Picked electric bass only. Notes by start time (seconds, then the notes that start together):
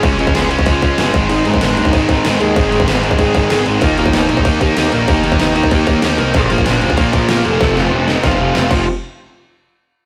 0.03 C#2
0.20 C#2
0.35 C#2
0.66 C#2
0.82 C#2
0.99 G1
1.14 G#1
1.30 G#1
1.46 G#1
1.62 G#1
1.78 D#2
1.93 G#1
2.09 G#1
2.26 G#1
2.41 D#2
2.57 G#1
2.73 G#1
2.88 G#1
3.19 G#1
3.35 G#1
3.51 G#1
3.67 G#1
3.82 D#2
3.98 D#2
4.14 D#2
4.30 A#1
4.45 D#2
4.61 D#2
4.78 D#2
4.93 A#1
5.08 D#2
5.24 D#2
5.40 D#2
5.72 D#2
5.88 D#2
6.03 D#2
6.19 C2
6.34 A#1
6.50 A#1
6.66 A#1
6.82 F1
6.98 A#1
7.13 A#1
7.29 A#1
7.45 F1
7.61 F1
7.77 F1
7.92 F1
8.24 F1
8.40 F1
8.56 F1
8.71 F1